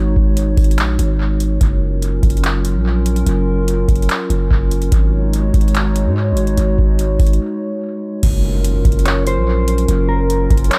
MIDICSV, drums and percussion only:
0, 0, Header, 1, 2, 480
1, 0, Start_track
1, 0, Key_signature, -6, "major"
1, 0, Tempo, 413793
1, 1866, Time_signature, 4, 2, 24, 8
1, 12514, End_track
2, 0, Start_track
2, 0, Title_t, "Drums"
2, 189, Note_on_c, 9, 36, 101
2, 305, Note_off_c, 9, 36, 0
2, 427, Note_on_c, 9, 42, 76
2, 543, Note_off_c, 9, 42, 0
2, 664, Note_on_c, 9, 36, 110
2, 666, Note_on_c, 9, 42, 54
2, 667, Note_on_c, 9, 46, 48
2, 746, Note_off_c, 9, 42, 0
2, 746, Note_on_c, 9, 42, 56
2, 780, Note_off_c, 9, 36, 0
2, 783, Note_off_c, 9, 46, 0
2, 825, Note_off_c, 9, 42, 0
2, 825, Note_on_c, 9, 42, 54
2, 904, Note_off_c, 9, 42, 0
2, 904, Note_on_c, 9, 42, 62
2, 916, Note_on_c, 9, 39, 101
2, 1020, Note_off_c, 9, 42, 0
2, 1032, Note_off_c, 9, 39, 0
2, 1149, Note_on_c, 9, 42, 78
2, 1265, Note_off_c, 9, 42, 0
2, 1627, Note_on_c, 9, 42, 77
2, 1743, Note_off_c, 9, 42, 0
2, 1867, Note_on_c, 9, 36, 108
2, 1867, Note_on_c, 9, 42, 81
2, 1983, Note_off_c, 9, 36, 0
2, 1983, Note_off_c, 9, 42, 0
2, 2348, Note_on_c, 9, 42, 75
2, 2464, Note_off_c, 9, 42, 0
2, 2585, Note_on_c, 9, 36, 105
2, 2588, Note_on_c, 9, 42, 53
2, 2668, Note_off_c, 9, 42, 0
2, 2668, Note_on_c, 9, 42, 55
2, 2701, Note_off_c, 9, 36, 0
2, 2748, Note_off_c, 9, 42, 0
2, 2748, Note_on_c, 9, 42, 53
2, 2827, Note_off_c, 9, 42, 0
2, 2827, Note_on_c, 9, 42, 67
2, 2838, Note_on_c, 9, 39, 97
2, 2943, Note_off_c, 9, 42, 0
2, 2954, Note_off_c, 9, 39, 0
2, 3070, Note_on_c, 9, 42, 77
2, 3186, Note_off_c, 9, 42, 0
2, 3548, Note_on_c, 9, 42, 76
2, 3664, Note_off_c, 9, 42, 0
2, 3668, Note_on_c, 9, 42, 45
2, 3784, Note_off_c, 9, 42, 0
2, 3787, Note_on_c, 9, 42, 79
2, 3903, Note_off_c, 9, 42, 0
2, 4268, Note_on_c, 9, 42, 76
2, 4384, Note_off_c, 9, 42, 0
2, 4505, Note_on_c, 9, 36, 106
2, 4508, Note_on_c, 9, 42, 57
2, 4588, Note_off_c, 9, 42, 0
2, 4588, Note_on_c, 9, 42, 53
2, 4621, Note_off_c, 9, 36, 0
2, 4667, Note_off_c, 9, 42, 0
2, 4667, Note_on_c, 9, 42, 56
2, 4746, Note_off_c, 9, 42, 0
2, 4746, Note_on_c, 9, 42, 61
2, 4758, Note_on_c, 9, 39, 100
2, 4862, Note_off_c, 9, 42, 0
2, 4874, Note_off_c, 9, 39, 0
2, 4990, Note_on_c, 9, 42, 76
2, 5106, Note_off_c, 9, 42, 0
2, 5228, Note_on_c, 9, 36, 93
2, 5344, Note_off_c, 9, 36, 0
2, 5468, Note_on_c, 9, 42, 73
2, 5584, Note_off_c, 9, 42, 0
2, 5587, Note_on_c, 9, 42, 47
2, 5703, Note_off_c, 9, 42, 0
2, 5707, Note_on_c, 9, 42, 83
2, 5708, Note_on_c, 9, 36, 109
2, 5823, Note_off_c, 9, 42, 0
2, 5824, Note_off_c, 9, 36, 0
2, 6188, Note_on_c, 9, 42, 75
2, 6304, Note_off_c, 9, 42, 0
2, 6425, Note_on_c, 9, 36, 108
2, 6427, Note_on_c, 9, 42, 55
2, 6508, Note_off_c, 9, 42, 0
2, 6508, Note_on_c, 9, 42, 54
2, 6541, Note_off_c, 9, 36, 0
2, 6588, Note_off_c, 9, 42, 0
2, 6588, Note_on_c, 9, 42, 52
2, 6666, Note_off_c, 9, 42, 0
2, 6666, Note_on_c, 9, 42, 64
2, 6678, Note_on_c, 9, 39, 97
2, 6782, Note_off_c, 9, 42, 0
2, 6794, Note_off_c, 9, 39, 0
2, 6910, Note_on_c, 9, 42, 75
2, 7026, Note_off_c, 9, 42, 0
2, 7387, Note_on_c, 9, 42, 74
2, 7503, Note_off_c, 9, 42, 0
2, 7506, Note_on_c, 9, 42, 44
2, 7622, Note_off_c, 9, 42, 0
2, 7627, Note_on_c, 9, 42, 82
2, 7743, Note_off_c, 9, 42, 0
2, 7870, Note_on_c, 9, 36, 98
2, 7986, Note_off_c, 9, 36, 0
2, 8108, Note_on_c, 9, 42, 73
2, 8224, Note_off_c, 9, 42, 0
2, 8345, Note_on_c, 9, 36, 109
2, 8347, Note_on_c, 9, 42, 54
2, 8348, Note_on_c, 9, 46, 50
2, 8428, Note_off_c, 9, 42, 0
2, 8428, Note_on_c, 9, 42, 55
2, 8461, Note_off_c, 9, 36, 0
2, 8464, Note_off_c, 9, 46, 0
2, 8507, Note_off_c, 9, 42, 0
2, 8507, Note_on_c, 9, 42, 56
2, 8623, Note_off_c, 9, 42, 0
2, 9547, Note_on_c, 9, 36, 107
2, 9547, Note_on_c, 9, 42, 85
2, 9547, Note_on_c, 9, 49, 98
2, 9663, Note_off_c, 9, 36, 0
2, 9663, Note_off_c, 9, 42, 0
2, 9663, Note_off_c, 9, 49, 0
2, 10028, Note_on_c, 9, 42, 78
2, 10144, Note_off_c, 9, 42, 0
2, 10265, Note_on_c, 9, 36, 107
2, 10267, Note_on_c, 9, 42, 55
2, 10347, Note_off_c, 9, 42, 0
2, 10347, Note_on_c, 9, 42, 58
2, 10381, Note_off_c, 9, 36, 0
2, 10427, Note_off_c, 9, 42, 0
2, 10427, Note_on_c, 9, 42, 56
2, 10505, Note_off_c, 9, 42, 0
2, 10505, Note_on_c, 9, 42, 67
2, 10517, Note_on_c, 9, 39, 105
2, 10621, Note_off_c, 9, 42, 0
2, 10633, Note_off_c, 9, 39, 0
2, 10749, Note_on_c, 9, 42, 78
2, 10865, Note_off_c, 9, 42, 0
2, 11226, Note_on_c, 9, 42, 76
2, 11342, Note_off_c, 9, 42, 0
2, 11346, Note_on_c, 9, 42, 47
2, 11462, Note_off_c, 9, 42, 0
2, 11466, Note_on_c, 9, 42, 85
2, 11582, Note_off_c, 9, 42, 0
2, 11947, Note_on_c, 9, 42, 81
2, 12063, Note_off_c, 9, 42, 0
2, 12185, Note_on_c, 9, 36, 110
2, 12186, Note_on_c, 9, 42, 57
2, 12266, Note_off_c, 9, 42, 0
2, 12266, Note_on_c, 9, 42, 55
2, 12301, Note_off_c, 9, 36, 0
2, 12346, Note_off_c, 9, 42, 0
2, 12346, Note_on_c, 9, 42, 58
2, 12425, Note_off_c, 9, 42, 0
2, 12425, Note_on_c, 9, 42, 68
2, 12436, Note_on_c, 9, 39, 104
2, 12514, Note_off_c, 9, 39, 0
2, 12514, Note_off_c, 9, 42, 0
2, 12514, End_track
0, 0, End_of_file